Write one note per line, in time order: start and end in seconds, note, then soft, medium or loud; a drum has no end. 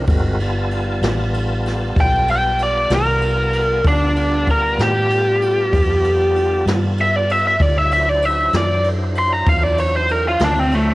0.07 0.99 G1 loud
0.07 0.40 G#3 medium
0.07 0.40 C4 medium
0.07 0.40 F#4 medium
0.07 0.40 A#4 medium
0.07 kick loud
0.07 ride medium
0.40 3.82 G3 medium
0.40 3.82 B3 medium
0.40 3.82 F4 medium
0.40 3.82 A5 medium
0.40 ride medium
0.71 ride medium
1.02 1.93 A1 medium
1.02 snare loud
1.02 ride medium
1.34 ride medium
1.66 snare soft
1.66 ride medium
1.96 2.88 B1 medium
1.96 kick loud
1.96 ride medium
2.00 2.29 G5 loud
2.28 2.60 G5 medium
2.28 ride medium
2.59 ride medium
2.63 2.92 D5 medium
2.90 3.82 C2 loud
2.90 snare loud
2.90 ride medium
2.94 3.84 A#4 loud
3.22 ride medium
3.53 ride medium
3.84 4.76 D2 medium
3.84 7.56 G3 medium
3.84 7.56 B3 medium
3.84 4.47 D4 medium
3.84 7.56 F4 medium
3.84 7.56 A5 medium
3.84 kick loud
3.84 ride medium
4.16 ride medium
4.47 4.80 A#4 medium
4.47 kick medium
4.47 ride medium
4.78 5.70 A2 medium
4.78 snare loud
4.78 ride medium
4.83 6.64 G4 loud
5.10 ride medium
5.41 ride medium
5.73 6.64 F2 medium
5.73 kick loud
5.73 ride medium
6.04 ride medium
6.36 ride medium
6.66 7.57 G2 medium
6.66 snare loud
6.66 ride medium
6.98 7.16 E5 loud
6.98 ride medium
7.16 7.32 D5 medium
7.30 7.45 E5 medium
7.30 ride medium
7.47 7.62 E5 medium
7.60 8.51 D2 medium
7.60 7.92 G3 medium
7.60 7.92 D#4 medium
7.60 7.92 F4 medium
7.60 7.92 C#5 medium
7.60 7.78 D5 loud
7.60 kick loud
7.60 ride medium
7.78 7.92 E5 medium
7.91 10.94 F#3 medium
7.91 10.94 D4 medium
7.91 10.94 E4 medium
7.91 10.94 C5 medium
7.91 8.09 E5 medium
7.91 ride medium
8.09 8.25 D5 medium
8.22 8.54 E5 medium
8.22 ride medium
8.53 9.44 F#2 medium
8.53 8.86 D5 loud
8.53 snare loud
8.53 ride medium
8.84 ride medium
9.15 9.33 C6 loud
9.15 ride medium
9.33 9.48 A#5 medium
9.46 10.38 E2 medium
9.46 9.63 F5 medium
9.46 kick loud
9.46 ride loud
9.63 9.78 D5 medium
9.78 9.94 C#5 medium
9.78 ride medium
9.96 10.11 C5 loud
10.09 10.26 A#4 loud
10.09 ride medium
10.28 10.42 F4 medium
10.39 10.94 D2 loud
10.39 snare loud
10.39 ride medium
10.44 10.59 D4 loud
10.59 10.75 C4 medium
10.71 10.94 A3 loud
10.71 ride medium